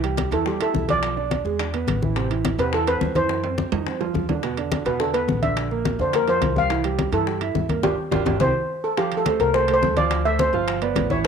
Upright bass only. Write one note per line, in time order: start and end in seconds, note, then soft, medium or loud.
0.00 0.26 C2 medium
0.31 0.71 E2 medium
0.74 1.40 B1 medium
1.45 1.85 E2 medium
1.87 2.53 A1 medium
2.58 2.98 E2 medium
3.01 3.67 F#2 medium
3.72 4.12 F2 medium
4.14 4.80 E2 medium
4.85 5.25 E2 medium
5.28 5.94 A#1 medium
5.99 6.39 F2 medium
6.41 7.07 C2 medium
7.12 7.52 G2 medium
7.55 7.82 G2 medium
7.83 7.94 G1 medium
8.11 8.22 G1 medium
8.25 8.37 G1 medium
8.40 8.51 C2 medium
9.40 9.79 C2 medium
9.82 10.48 D2 medium
10.53 10.93 G1 medium
10.95 11.27 A1 loud